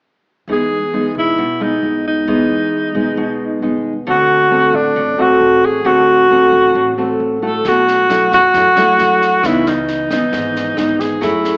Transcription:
0.48 upright bass E2, nylon-string guitar E3 G#3 B3 D#4
0.52 alto saxophone G#4
0.93 nylon-string guitar G#3 B3 D#4
1.15 upright bass B1, alto saxophone E4
1.38 upright bass B1, nylon-string guitar B2
1.60 nylon-string guitar G#3 B3 D#4, alto saxophone D#4
1.83 upright bass B1
2.07 alto saxophone D#4
2.28 upright bass E2, nylon-string guitar E3 G#3 B3 D#4
2.95 upright bass B1, nylon-string guitar G#3 B3 D#4
3.17 upright bass B1, nylon-string guitar B2
3.62 upright bass D#2, nylon-string guitar G#3 B3 D#4
4.07 upright bass D2, nylon-string guitar D3 A3 C4 F#4, alto saxophone F#4
4.51 nylon-string guitar A3 C4 F#4
4.73 upright bass A1, alto saxophone D4
4.96 upright bass A1, nylon-string guitar A2
5.18 nylon-string guitar A3 C4 F#4, alto saxophone F#4
5.40 upright bass A1
5.65 alto saxophone G#4
5.85 upright bass D2, nylon-string guitar D3 A3 C4 F#4, alto saxophone F#4
6.30 nylon-string guitar A3 C4 F#4
6.52 upright bass A1
6.74 upright bass A1, nylon-string guitar A2
6.97 nylon-string guitar A3 C4 F#4
7.20 upright bass A1
7.42 nylon-string guitar A3 E4 F#4, alto saxophone A4
7.65 upright bass B1, nylon-string guitar B2, alto saxophone F#4, kick, snare
7.88 snare
8.10 nylon-string guitar F#3 A3 E4, cross-stick, snare
8.32 upright bass F#2, alto saxophone F#4, kick, snare
8.54 upright bass F#2, nylon-string guitar F#2 F#3 A3 E4, kick, snare
8.76 nylon-string guitar F#3 A3 E4, cross-stick, snare
8.98 upright bass F#2, snare
9.21 kick, snare
9.43 upright bass C#2, nylon-string guitar C#3 E3 B3 D#4, alto saxophone E4, kick, cross-stick, snare
9.66 nylon-string guitar E3 B3 D#4, alto saxophone D#4, snare
9.88 snare
10.11 upright bass G#1, nylon-string guitar E3 B3 D#4, kick, cross-stick, snare
10.32 upright bass G#1, nylon-string guitar G#2, kick, snare
10.56 snare
10.77 upright bass G#1, nylon-string guitar E3 B3 D#4, cross-stick, snare
11.00 alto saxophone G#4, kick, snare
11.21 upright bass F#2, nylon-string guitar F#3 A3 E4 G#4, alto saxophone E4, kick, snare
11.45 snare

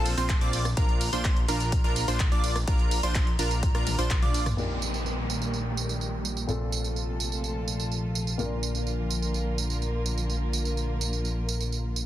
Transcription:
Already playing: analog synth bass A#1, supersaw synth C4 F4 A4, digital synth lead A5
0.06 open hi-hat, ride, tambourine
0.17 analog synth bass A#1, supersaw synth C4 F4 C5, digital synth lead C6, closed hi-hat, tambourine
0.29 kick, clap, closed hi-hat, ride, tambourine
0.41 analog synth bass A#1, supersaw synth C4 F4 D5, digital synth lead D6, closed hi-hat
0.53 open hi-hat, ride, tambourine
0.65 cross-stick, closed hi-hat, tambourine
0.77 analog synth bass A#1, supersaw synth D4 F4 A#4, digital synth lead A#5, kick, closed hi-hat, ride, tambourine
0.89 closed hi-hat
1.01 open hi-hat, ride, tambourine
1.13 analog synth bass A#1, supersaw synth D4 F4 C5, digital synth lead C6, closed hi-hat, tambourine
1.25 kick, clap, closed hi-hat, ride, tambourine
1.37 closed hi-hat
1.48 analog synth bass A#1, supersaw synth D4 F4 A#4, digital synth lead A#5, open hi-hat, ride, tambourine
1.60 closed hi-hat, tambourine
1.72 kick, closed hi-hat, ride, tambourine
1.84 analog synth bass A#1, supersaw synth D4 F4 A#4, digital synth lead A#5, closed hi-hat
1.96 open hi-hat, ride, tambourine
2.08 analog synth bass A#1, supersaw synth D4 F4 C5, digital synth lead C6, closed hi-hat, tambourine
2.20 kick, clap, closed hi-hat, ride, tambourine
2.32 analog synth bass A#1, supersaw synth D4 F4 D5, digital synth lead D6, closed hi-hat
2.44 open hi-hat, ride, tambourine
2.56 cross-stick, closed hi-hat, tambourine
2.68 analog synth bass A#1, supersaw synth D4 F4 A#4, digital synth lead A#5, kick, closed hi-hat, ride, tambourine
2.79 closed hi-hat
2.91 open hi-hat, ride, tambourine
3.03 analog synth bass A#1, supersaw synth D4 F4 C5, digital synth lead C6, closed hi-hat, tambourine
3.15 kick, clap, closed hi-hat, ride, tambourine
3.27 closed hi-hat
3.39 analog synth bass A#1, supersaw synth D4 F4 A#4, digital synth lead A#5, open hi-hat, ride, tambourine
3.51 closed hi-hat, tambourine
3.63 kick, closed hi-hat, ride, tambourine
3.75 analog synth bass A#1, supersaw synth D4 F4 A#4, digital synth lead A#5, cross-stick, closed hi-hat
3.87 open hi-hat, high tom, ride, tambourine
3.99 analog synth bass A#1, supersaw synth D4 F4 C5, digital synth lead C6, closed hi-hat, tambourine
4.10 kick, clap, closed hi-hat, mid tom, ride, tambourine
4.22 analog synth bass A#1, supersaw synth D4 F4 D5, digital synth lead D6, closed hi-hat, mid tom
4.34 open hi-hat, ride, tambourine
4.46 cross-stick, closed hi-hat, mid tom, tambourine
4.57 analog synth bass A#1, grand piano A#2 A#3 D#4 G4 A#4, string section D#3 G3 A#3 G4 A#4, tambourine, downlifter
4.82 tambourine
4.94 tambourine
5.06 tambourine
5.30 tambourine
5.42 tambourine
5.54 tambourine
5.77 tambourine
5.89 tambourine
6.01 tambourine
6.25 tambourine
6.37 tambourine
6.47 analog synth bass A#1, grand piano A#2 A3 C4 F4 A4, string section C3 F3 A3 F4 A4, tambourine
6.72 tambourine
6.84 tambourine
6.96 tambourine
7.20 tambourine
7.32 tambourine
7.44 tambourine
7.68 tambourine
7.80 tambourine
7.91 tambourine
8.15 tambourine
8.27 tambourine
8.38 analog synth bass A#1, grand piano A#2 A#3 D4 F4 A#4, string section D3 A#3 A#4, tambourine
8.63 tambourine
8.75 tambourine
8.87 tambourine
9.10 tambourine
9.22 tambourine
9.34 tambourine
9.58 tambourine
9.70 tambourine
9.82 tambourine
10.06 tambourine
10.18 tambourine
10.30 tambourine
10.53 tambourine
10.65 tambourine
10.77 tambourine
11.01 tambourine
11.13 tambourine
11.25 tambourine
11.49 tambourine
11.61 tambourine
11.72 tambourine
11.96 tambourine

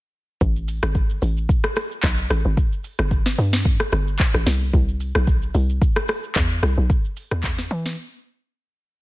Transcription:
0.41 log drum bass A1, kick, shaker
0.56 shaker
0.68 open hi-hat, shaker
0.83 log drum bass G#1, cross-stick, shaker
0.95 kick, shaker
1.10 shaker
1.22 log drum bass A1, open hi-hat, shaker
1.37 shaker
1.49 kick, shaker
1.64 cross-stick, shaker
1.76 cross-stick, open hi-hat, shaker
1.91 shaker
2.03 log drum bass B1, kick, clap, shaker
2.18 shaker
2.30 log drum bass A1, cross-stick, open hi-hat, shaker
2.45 log drum bass G#1
2.57 kick, shaker
2.72 shaker
2.84 open hi-hat, shaker
2.99 log drum bass G1, cross-stick, shaker
3.11 kick, shaker
3.26 snare, shaker
3.38 log drum bass G2, open hi-hat, shaker
3.53 snare, shaker
3.65 kick, shaker
3.80 cross-stick, shaker
3.92 log drum bass G1, cross-stick, open hi-hat, shaker
4.07 shaker
4.19 kick, clap, shaker
4.34 log drum bass A1, cross-stick, shaker
4.46 log drum bass C2, snare, open hi-hat, shaker
4.73 log drum bass C2, kick, shaker
4.88 shaker
5.00 open hi-hat, shaker
5.15 log drum bass B1, cross-stick, shaker
5.27 kick, shaker
5.42 shaker
5.54 log drum bass C2, open hi-hat, shaker
5.69 shaker
5.82 kick, shaker
5.96 cross-stick, shaker
6.08 cross-stick, open hi-hat, shaker
6.24 shaker
6.36 log drum bass E2, kick, clap, shaker
6.50 shaker
6.63 log drum bass C2, cross-stick, open hi-hat, shaker
6.78 log drum bass B1
6.90 kick, shaker
7.05 shaker
7.17 open hi-hat, shaker
7.31 log drum bass E2, cross-stick, shaker
7.43 kick, clap, shaker
7.58 snare, shaker
7.71 log drum bass E3, open hi-hat, shaker
7.86 snare, shaker

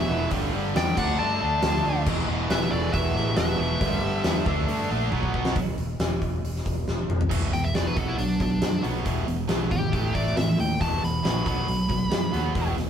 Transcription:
Already playing: distorted electric guitar B2 E3, tonewheel organ E4 B4 F#5, lead electric guitar B4 E5
0.09 fingered electric bass E1, overdriven electric guitar E2 B2 E3
0.30 fingered electric bass G1, overdriven electric guitar G2 D3 G3, tonewheel organ G3 D4 A4, kick, open hi-hat
0.53 fingered electric bass G1, overdriven electric guitar G2 D3 G3
0.74 fingered electric bass E2, overdriven electric guitar G2 D3 G3, lead electric guitar D5 G5, snare, open hi-hat
0.87 snare
0.96 fingered electric bass D2, overdriven electric guitar D3 A3 D4, lead electric guitar D5 F#5, tonewheel organ E5, kick, crash
1.17 fingered electric bass G2, overdriven electric guitar D3 A3 D4, lead electric guitar D5 A5
1.40 fingered electric bass D2, overdriven electric guitar D3 A3 D4
1.62 fingered electric bass D2, overdriven electric guitar D3 A3 D4, snare, open hi-hat
1.84 fingered electric bass D2, overdriven electric guitar D3 A3 D4
2.06 fingered electric bass E1, overdriven electric guitar E2 B2 E3, tonewheel organ E4 B4 F#5, kick, crash
2.28 fingered electric bass E1, overdriven electric guitar E2 B2 E3
2.50 fingered electric bass E1, overdriven electric guitar E2 B2 E3, lead electric guitar B4 E5, snare, open hi-hat
2.70 fingered electric bass E1, overdriven electric guitar E2 B2 E3, lead electric guitar A4 D5
2.93 fingered electric bass E1, overdriven electric guitar E2 B2 E3, lead electric guitar B4 E5, kick, open hi-hat
3.14 fingered electric bass A1, overdriven electric guitar E2 B2 E3, snare
3.36 fingered electric bass E1, overdriven electric guitar E2 B2 E3, lead electric guitar B4 E5, snare, open hi-hat
3.58 fingered electric bass E1, overdriven electric guitar E2 B2 E3
3.80 fingered electric bass G1, overdriven electric guitar G2 D3 G3, tonewheel organ G3 D4 A4, kick, open hi-hat
4.02 fingered electric bass G1, overdriven electric guitar G2 D3 G3
4.24 fingered electric bass E2, overdriven electric guitar G2 D3 G3, snare, open hi-hat
4.46 fingered electric bass D2, overdriven electric guitar D3 A3 D4, tonewheel organ E5, kick
4.67 fingered electric bass G2, overdriven electric guitar D3 A3 D4, open hi-hat
4.89 fingered electric bass A#1, overdriven electric guitar D3 A3 D4
5.12 fingered electric bass B1, overdriven electric guitar B2 F#3 B3, tonewheel organ B3 F#4 B4, kick
5.23 kick
5.34 fingered electric bass B1, overdriven electric guitar B2 F#3 B3, kick
5.45 snare
5.56 fingered electric bass E1, kick, open hi-hat
5.78 fingered electric bass E1, open hi-hat
5.99 fingered electric bass E1, snare, open hi-hat
6.22 fingered electric bass E1, kick, open hi-hat
6.44 fingered electric bass E1, open hi-hat
6.56 snare
6.66 fingered electric bass E1, kick, open hi-hat
6.87 fingered electric bass E1, snare
7.09 fingered electric bass E1, mid tom
7.21 floor tom
7.30 fingered electric bass E1, overdriven electric guitar E2 B2 E3, kick, crash
7.53 fingered electric bass E1, overdriven electric guitar E2 B2, lead electric guitar G5, open hi-hat
7.64 lead electric guitar E5
7.73 fingered electric bass E1, overdriven electric guitar E2 B2 E3, lead electric guitar D5, snare, open hi-hat
7.87 lead electric guitar B4
7.96 fingered electric bass B1, overdriven electric guitar B2 F#3 B3, lead electric guitar A4, kick, open hi-hat
8.08 lead electric guitar E4
8.17 fingered electric bass B1, overdriven electric guitar B2 F#3, lead electric guitar D4, open hi-hat
8.40 fingered electric bass B1, overdriven electric guitar B2 F#3, lead electric guitar D4, kick, open hi-hat
8.60 fingered electric bass F#2, overdriven electric guitar B2 F#3, snare, open hi-hat
8.81 fingered electric bass B1, overdriven electric guitar B2 F#3 B3, open hi-hat
9.04 fingered electric bass E1, overdriven electric guitar E2 B2 E3, kick, open hi-hat
9.26 fingered electric bass E1, overdriven electric guitar E2 B2, open hi-hat
9.48 fingered electric bass B1, overdriven electric guitar E2 B2 E3, snare, open hi-hat
9.70 fingered electric bass G#1, overdriven electric guitar E2 B2, lead electric guitar G4, kick, open hi-hat
9.92 fingered electric bass A1, overdriven electric guitar A2 E3 A3, kick, open hi-hat
10.14 fingered electric bass A1, overdriven electric guitar A2 E3 A3, lead electric guitar D5, kick, open hi-hat
10.27 snare
10.37 fingered electric bass A1, overdriven electric guitar A2 E3, lead electric guitar E5, snare, open hi-hat
10.58 fingered electric bass D#2, overdriven electric guitar A2 E3, lead electric guitar G5, open hi-hat
10.80 fingered electric bass E1, overdriven electric guitar E2 B2 E3, lead electric guitar A5, kick, open hi-hat
11.02 fingered electric bass E1, overdriven electric guitar E2 B2, lead electric guitar B5, snare, open hi-hat
11.23 fingered electric bass A#1, overdriven electric guitar E2 B2 E3, snare, open hi-hat
11.45 fingered electric bass B1, overdriven electric guitar B2 F#3 B3, lead electric guitar B5, kick, open hi-hat
11.67 fingered electric bass B1, overdriven electric guitar B2 F#3, open hi-hat
11.89 fingered electric bass B1, overdriven electric guitar B2 F#3, kick, open hi-hat
12.11 fingered electric bass F#2, overdriven electric guitar B2 F#3, snare, open hi-hat
12.32 fingered electric bass D#2, overdriven electric guitar B2 F#3 B3, open hi-hat
12.55 fingered electric bass E1, overdriven electric guitar E2 B2 E3, kick, open hi-hat
12.76 fingered electric bass E1, overdriven electric guitar E2 B2, snare, open hi-hat

